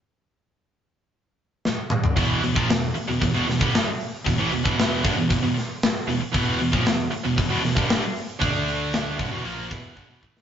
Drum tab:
HH |----------------|o-o-o-o-o-o-o-o-|o-o-o-o-o-o-o-o-|o-o-o-o-o-o-o-o-|
SD |------------o---|----o-----o-o---|----o-----o-o---|----o-----o-o---|
T2 |--------------o-|----------------|----------------|----------------|
FT |---------------o|----------------|----------------|----------------|
BD |----------------|o--o----o--o----|o--o--o-o-------|o--o----o--o----|

HH |o-o-o-o-o-o-----|
SD |----o-----o----o|
T2 |----------------|
FT |----------------|
BD |o-----o---o-o-o-|